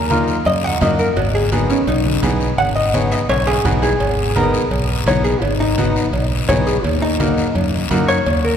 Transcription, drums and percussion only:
0.10 cowbell, high conga, short guiro
0.28 short guiro
0.45 cowbell, long guiro
0.81 cowbell, high conga, low conga, low timbale, short guiro
0.99 short guiro
1.17 cowbell, long guiro
1.52 cowbell, high conga, short guiro
1.70 short guiro
1.87 cowbell, long guiro
2.05 high conga
2.23 cowbell, high conga, low timbale, short guiro
2.41 short guiro
2.58 cowbell, long guiro
2.94 cowbell, high conga, short guiro
3.12 short guiro
3.29 cowbell, high timbale, long guiro
3.47 high timbale
3.65 cowbell, high conga, low conga, short guiro
3.82 low timbale, short guiro
4.00 cowbell, long guiro
4.36 cowbell, high conga, short guiro
4.54 short guiro
4.71 cowbell, long guiro
5.07 cowbell, high conga, low timbale, short guiro
5.25 short guiro
5.42 cowbell, long guiro
5.78 cowbell, high conga, short guiro
5.96 short guiro
6.13 cowbell, long guiro
6.49 cowbell, high conga, low conga, low timbale, short guiro
6.67 short guiro
6.84 cowbell, long guiro
7.20 cowbell, high conga, short guiro
7.38 short guiro
7.55 cowbell, long guiro
7.91 cowbell, high conga, low timbale, short guiro
8.08 short guiro
8.26 cowbell, long guiro

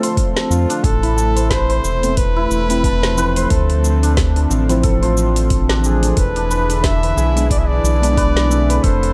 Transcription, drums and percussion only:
0.03 open hi-hat, shaker
0.17 kick, open hi-hat, shaker
0.37 snare, open hi-hat
0.51 shaker
0.70 open hi-hat, shaker
0.84 kick, open hi-hat, shaker
1.03 open hi-hat
1.18 shaker
1.37 open hi-hat, shaker
1.51 kick, snare, open hi-hat, shaker
1.70 open hi-hat
1.85 shaker
2.03 open hi-hat, shaker
2.17 kick, open hi-hat, shaker
2.51 shaker
2.70 open hi-hat, shaker
2.84 kick, open hi-hat, shaker
3.03 snare, open hi-hat
3.18 shaker
3.36 open hi-hat, shaker
3.50 kick, open hi-hat, shaker
3.70 open hi-hat
3.84 shaker
4.03 open hi-hat, shaker
4.17 kick, snare, open hi-hat, shaker
4.36 open hi-hat
4.51 shaker
4.69 open hi-hat, shaker
4.83 kick, open hi-hat, shaker
5.03 open hi-hat
5.17 shaker
5.36 open hi-hat, shaker
5.50 kick, open hi-hat, shaker
5.69 snare, open hi-hat
5.84 shaker
6.03 open hi-hat, shaker
6.17 kick, open hi-hat, shaker
6.36 open hi-hat
6.51 shaker
6.70 open hi-hat, shaker
6.84 kick, snare, open hi-hat, shaker
7.03 open hi-hat
7.18 shaker
7.37 open hi-hat, shaker
7.51 kick, open hi-hat, shaker
7.85 shaker
8.03 open hi-hat, shaker
8.17 kick, open hi-hat, shaker
8.37 snare, open hi-hat
8.51 shaker
8.70 open hi-hat, shaker
8.84 kick, open hi-hat, shaker
9.03 open hi-hat

